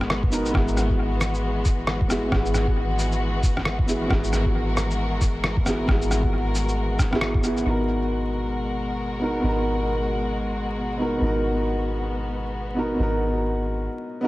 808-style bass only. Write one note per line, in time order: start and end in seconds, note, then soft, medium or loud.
0.00 0.53 G#1 medium
0.54 2.30 G#1 loud
2.32 4.08 G#1 medium
4.10 5.86 G#1 medium
5.88 7.64 G#1 medium
7.66 9.42 G#1 medium
9.43 11.19 G#1 medium
11.21 12.97 G#1 medium
12.99 13.88 G#1 medium